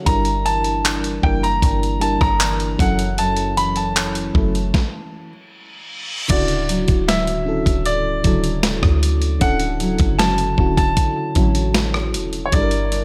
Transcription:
0.00 0.45 D3 medium
0.00 0.14 F#3 medium
0.00 0.14 C#4 medium
0.00 0.84 E4 medium
0.05 1.19 G1 loud
0.05 0.85 G3 medium
0.05 0.86 D4 medium
0.05 0.87 E4 medium
0.05 0.87 A#4 loud
0.05 0.46 A#5 loud
0.05 kick loud
0.05 closed hi-hat medium
0.25 closed hi-hat medium
0.46 2.40 E3 medium
0.46 1.26 A5 loud
0.46 closed hi-hat medium
0.64 closed hi-hat soft
0.85 1.61 D4 medium
0.85 clap loud
0.85 closed hi-hat medium
1.04 closed hi-hat medium
1.22 1.61 F#1 loud
1.22 1.76 G3 medium
1.22 2.40 A#3 medium
1.22 1.76 D4 medium
1.22 1.77 E4 medium
1.22 1.78 A#4 medium
1.22 1.43 G5 medium
1.22 kick medium
1.43 2.03 A#5 loud
1.43 closed hi-hat soft
1.62 2.18 G1 loud
1.62 2.40 D4 medium
1.62 kick medium
1.62 closed hi-hat medium
1.83 closed hi-hat soft
2.00 2.78 G3 medium
2.00 2.79 D4 medium
2.00 2.79 E4 medium
2.00 2.80 A#4 medium
2.00 2.21 A5 medium
2.00 closed hi-hat medium
2.21 2.77 G1 medium
2.21 2.81 A#5 loud
2.21 kick loud
2.21 cross-stick medium
2.40 3.21 E3 medium
2.40 2.87 A#3 medium
2.40 2.88 D4 medium
2.40 clap loud
2.40 closed hi-hat medium
2.60 closed hi-hat soft
2.78 4.31 F#1 loud
2.78 3.17 F#2 medium
2.78 4.03 F#3 medium
2.78 4.04 C#4 medium
2.78 4.04 E4 medium
2.78 4.05 A4 medium
2.78 3.20 F#5 medium
2.78 kick loud
2.78 closed hi-hat medium
2.99 closed hi-hat medium
3.18 4.82 F#2 medium
3.18 3.58 A5 loud
3.18 closed hi-hat medium
3.37 closed hi-hat medium
3.57 5.32 E3 medium
3.57 3.75 B5 loud
3.57 closed hi-hat medium
3.76 5.29 A5 medium
3.76 closed hi-hat soft
3.96 5.32 C#4 medium
3.96 clap loud
3.96 closed hi-hat medium
4.15 closed hi-hat medium
4.34 4.72 F#1 loud
4.34 4.73 F#3 medium
4.34 5.32 A3 medium
4.34 4.74 C#4 medium
4.34 4.75 E4 medium
4.34 4.75 A4 medium
4.34 kick medium
4.55 closed hi-hat soft
4.74 kick loud
4.74 snare medium
4.74 reverse cymbal medium
6.28 6.86 D1 loud
6.28 7.10 C#3 medium
6.28 7.09 D3 loud
6.28 9.41 D3 medium
6.28 7.09 E4 medium
6.28 7.10 E4 medium
6.28 7.11 F#4 loud
6.28 7.10 D5 medium
6.28 kick loud
6.28 closed hi-hat medium
6.28 crash medium
6.48 closed hi-hat medium
6.69 7.07 F#3 medium
6.69 closed hi-hat medium
6.88 7.63 D1 loud
6.88 kick medium
6.88 closed hi-hat medium
7.08 8.23 F#3 medium
7.08 8.25 E4 medium
7.08 7.88 E5 medium
7.08 snare loud
7.08 closed hi-hat medium
7.27 closed hi-hat medium
7.45 7.99 D3 medium
7.45 8.00 C#4 medium
7.45 8.00 E4 medium
7.45 8.01 A4 medium
7.66 8.22 D1 loud
7.66 kick medium
7.66 closed hi-hat medium
7.86 9.46 D5 medium
7.86 closed hi-hat medium
8.23 8.81 D1 loud
8.23 9.04 C#3 medium
8.23 9.03 D3 medium
8.23 9.79 F#3 medium
8.23 9.05 E4 medium
8.23 8.63 E4 medium
8.23 9.05 A4 medium
8.23 kick medium
8.23 closed hi-hat medium
8.44 closed hi-hat medium
8.63 9.42 E4 medium
8.63 snare loud
8.63 closed hi-hat medium
8.83 9.39 D2 medium
8.83 kick medium
8.83 cross-stick medium
9.03 closed hi-hat medium
9.22 closed hi-hat soft
9.39 9.98 D1 loud
9.39 10.20 D3 medium
9.39 12.92 D3 medium
9.39 10.21 C#4 medium
9.39 10.21 E4 medium
9.39 10.20 E4 medium
9.39 10.22 A4 loud
9.39 10.22 F#5 loud
9.39 kick loud
9.39 closed hi-hat medium
9.60 closed hi-hat medium
9.80 10.18 F#3 medium
9.80 closed hi-hat medium
9.98 10.56 F#1 loud
9.98 kick medium
9.98 closed hi-hat medium
10.19 11.36 F#3 medium
10.19 11.36 C#4 medium
10.19 11.37 E4 medium
10.19 10.76 A5 loud
10.19 snare loud
10.19 closed hi-hat medium
10.38 closed hi-hat medium
10.56 10.96 D1 loud
10.56 11.11 D3 medium
10.56 11.11 C#4 medium
10.56 11.12 E4 medium
10.56 11.12 F#4 medium
10.56 kick medium
10.77 11.52 A5 loud
10.77 kick medium
10.77 closed hi-hat medium
10.97 kick medium
10.97 closed hi-hat medium
11.34 12.16 A1 loud
11.34 12.15 D3 medium
11.34 12.53 F#3 medium
11.34 12.16 C#4 medium
11.34 12.61 C#4 medium
11.34 12.16 E4 medium
11.34 11.75 E4 medium
11.34 12.17 F#4 medium
11.34 kick medium
11.34 closed hi-hat medium
11.55 closed hi-hat medium
11.74 12.95 E4 medium
11.74 snare loud
11.74 closed hi-hat medium
11.94 cross-stick medium
12.14 12.52 E1 medium
12.14 closed hi-hat medium
12.33 closed hi-hat medium
12.46 12.53 C#5 medium
12.52 13.04 G1 loud
12.52 13.04 G3 loud
12.52 13.04 G3 medium
12.52 13.04 D4 medium
12.52 13.04 E4 medium
12.52 12.61 A4 medium
12.52 13.04 A#4 medium
12.52 13.04 D5 medium
12.52 kick loud
12.52 closed hi-hat medium
12.62 13.04 A#4 loud
12.71 closed hi-hat medium
12.92 13.04 D4 medium
12.92 closed hi-hat medium

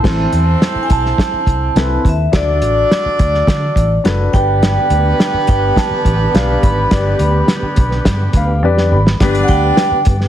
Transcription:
0.00 0.64 C4 medium
0.00 0.64 E4 medium
0.00 0.64 A4 medium
0.00 0.87 A5 medium
0.04 0.25 A1 loud
0.04 2.01 C4 medium
0.04 2.01 E4 medium
0.04 2.01 A4 medium
0.04 0.65 C5 medium
0.04 2.01 C5 medium
0.04 kick loud
0.04 snare loud
0.04 crash medium
0.32 0.54 E2 medium
0.32 closed hi-hat medium
0.62 snare medium
0.62 closed hi-hat medium
0.75 muted fingered electric bass stroke soft
0.83 0.90 G#5 medium
0.90 1.11 B1 medium
0.90 2.09 A5 loud
0.90 kick medium
0.90 closed hi-hat medium
1.06 snare soft
1.18 kick medium
1.18 snare loud
1.18 closed hi-hat medium
1.33 muted fingered electric bass stroke soft
1.47 1.68 C2 medium
1.47 kick medium
1.47 closed hi-hat medium
1.75 1.97 C2 medium
1.75 2.06 C4 medium
1.75 2.06 E4 medium
1.75 2.07 A4 medium
1.75 2.07 B4 medium
1.75 snare loud
1.75 closed hi-hat medium
2.05 2.26 D#2 medium
2.05 kick medium
2.05 closed hi-hat medium
2.09 2.36 E5 medium
2.32 2.62 D2 loud
2.32 2.93 D4 medium
2.32 4.01 D4 medium
2.32 4.01 F#4 medium
2.32 2.94 F#4 medium
2.32 4.01 A4 medium
2.32 2.94 A4 medium
2.32 2.40 C5 medium
2.32 4.01 D5 medium
2.32 4.02 D5 medium
2.32 kick loud
2.32 snare loud
2.32 closed hi-hat medium
2.40 2.97 D5 medium
2.62 2.83 A1 medium
2.62 closed hi-hat medium
2.91 snare medium
2.91 closed hi-hat medium
3.05 muted fingered electric bass stroke soft
3.19 3.41 D2 medium
3.19 kick medium
3.19 closed hi-hat medium
3.34 snare soft
3.47 3.69 D3 medium
3.47 kick loud
3.47 snare loud
3.47 closed hi-hat medium
3.76 3.97 A1 medium
3.76 kick medium
3.76 closed hi-hat medium
4.04 4.26 F#1 medium
4.04 4.32 D4 medium
4.04 4.33 F#4 medium
4.04 4.34 A4 medium
4.04 4.32 B4 medium
4.04 snare loud
4.04 closed hi-hat medium
4.33 4.76 G1 medium
4.33 8.59 B3 medium
4.33 5.25 D4 medium
4.33 8.59 D4 medium
4.33 5.25 G4 medium
4.33 8.59 G4 medium
4.33 5.25 B4 medium
4.33 8.59 B4 medium
4.33 5.25 D5 medium
4.33 5.47 G5 medium
4.33 kick loud
4.33 closed hi-hat medium
4.63 9.16 D3 medium
4.63 9.16 B3 medium
4.63 9.16 G4 medium
4.63 snare loud
4.63 closed hi-hat medium
4.90 5.11 D2 loud
4.90 closed hi-hat medium
5.20 snare loud
5.20 closed hi-hat medium
5.34 muted fingered electric bass stroke soft
5.47 5.69 G1 medium
5.47 5.78 G5 medium
5.47 kick medium
5.47 closed hi-hat medium
5.76 6.65 A5 medium
5.76 kick medium
5.76 snare loud
5.76 closed hi-hat medium
5.91 muted fingered electric bass stroke soft
6.04 6.26 A1 medium
6.04 kick medium
6.04 closed hi-hat medium
6.34 6.55 B1 medium
6.34 6.64 D4 medium
6.34 6.64 G4 medium
6.34 6.65 B4 medium
6.34 6.65 F5 medium
6.34 snare loud
6.34 closed hi-hat medium
6.63 6.84 G#1 medium
6.63 8.59 B5 medium
6.63 kick loud
6.63 closed hi-hat medium
6.91 7.12 G1 loud
6.91 7.52 D4 medium
6.91 7.52 G4 medium
6.91 7.52 B4 medium
6.91 7.52 D5 medium
6.91 kick loud
6.91 snare loud
6.91 closed hi-hat medium
7.19 7.41 D2 medium
7.19 closed hi-hat medium
7.48 snare medium
7.48 closed hi-hat medium
7.62 muted fingered electric bass stroke soft
7.76 7.98 B1 medium
7.76 kick loud
7.76 closed hi-hat medium
7.91 snare soft
8.05 8.26 G2 loud
8.05 kick medium
8.05 snare loud
8.05 closed hi-hat loud
8.33 8.62 D2 medium
8.33 8.62 F5 medium
8.33 kick medium
8.33 closed hi-hat medium
8.62 8.93 F2 medium
8.62 8.93 D4 medium
8.62 8.94 G4 medium
8.62 8.94 B4 medium
8.62 8.94 D5 medium
8.62 8.90 G5 medium
8.78 snare medium
8.91 9.12 G#1 medium
8.91 9.18 B5 medium
9.07 snare medium
9.20 9.41 G1 loud
9.20 10.28 D3 medium
9.20 9.81 G3 medium
9.20 10.28 B3 medium
9.20 9.82 B3 medium
9.20 10.04 D4 medium
9.20 9.82 D4 medium
9.20 10.28 G4 medium
9.20 10.04 G4 medium
9.20 9.82 G4 medium
9.20 10.04 B4 medium
9.20 9.82 B4 loud
9.20 10.04 D5 medium
9.20 kick loud
9.20 snare loud
9.20 closed hi-hat medium
9.35 closed hi-hat medium
9.43 9.49 F#5 medium
9.48 9.70 D2 loud
9.48 10.02 G5 loud
9.48 kick medium
9.48 closed hi-hat medium
9.77 snare loud
9.77 closed hi-hat medium
9.91 muted fingered electric bass stroke soft
10.05 10.27 G2 medium
10.05 kick loud
10.05 closed hi-hat medium
10.21 snare soft

